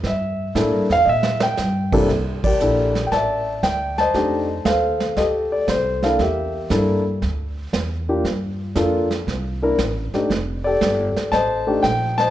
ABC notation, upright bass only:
X:1
M:4/4
L:1/8
Q:"Swing" 1/4=117
K:Cmix
V:1 name="Upright bass" clef=bass
G,,2 (3A,, G,, E,, B,,2 G,,2 | C,,2 B,,,2 A,,,2 D,,2 | F,,2 _E,,2 D,,2 C,,2 | E,,2 G,,2 D,,2 E,,2 |
G,,2 F,,2 C,,2 A,,, z | F,,,2 G,,, z A,,,2 B,,,2 |]